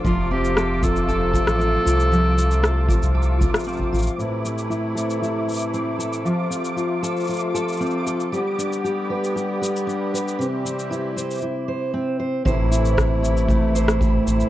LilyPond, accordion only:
\new Staff \with { instrumentName = "Accordion" } { \clef bass \time 4/4 \key a \minor \tempo 4 = 116 << { <f a f'>1~ | <f a f'>1 | <e e'>1 | <f f'>1 |
<g g'>1~ | <g g'>2 r2 | <e e'>1 | } \\ { c1~ | c1 | <c a>1~ | <c a>1 |
<d b>1 | <e c'>2 r2 | <c a>1 | } >> }